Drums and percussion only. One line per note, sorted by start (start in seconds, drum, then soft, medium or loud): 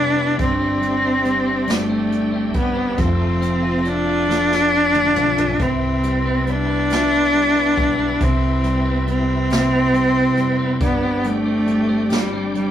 0.39 kick loud
0.39 closed hi-hat medium
0.82 closed hi-hat medium
1.25 closed hi-hat medium
1.67 snare loud
1.67 closed hi-hat medium
2.12 closed hi-hat soft
2.54 kick medium
2.54 closed hi-hat soft
2.98 kick loud
2.98 closed hi-hat medium
3.42 closed hi-hat medium
3.85 closed hi-hat medium
4.30 snare medium
4.52 snare medium
4.94 mid tom medium
5.16 mid tom medium
5.38 floor tom loud
5.60 kick loud
5.60 closed hi-hat medium
6.03 closed hi-hat medium
6.47 closed hi-hat medium
6.90 snare loud
6.90 closed hi-hat medium
7.34 closed hi-hat soft
7.77 kick medium
7.77 closed hi-hat medium
8.21 kick loud
8.21 closed hi-hat medium
8.64 closed hi-hat medium
9.07 closed hi-hat medium
9.50 snare loud
9.50 closed hi-hat medium
9.94 closed hi-hat soft
10.37 closed hi-hat soft
10.81 kick loud
10.81 closed hi-hat medium
11.24 closed hi-hat medium
11.67 closed hi-hat medium
12.10 snare loud
12.10 closed hi-hat medium
12.55 closed hi-hat soft